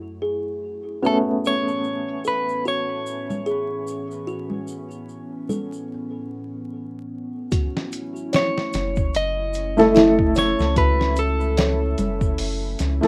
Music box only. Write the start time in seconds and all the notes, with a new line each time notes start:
0.22 G#4
1.03 F#4
2.25 A4
2.65 F#4
3.46 G#4
4.27 F#4
5.49 A4
7.52 F#4
8.33 C#5
9.95 E4
10.36 C#5
10.77 F#4
11.58 C#5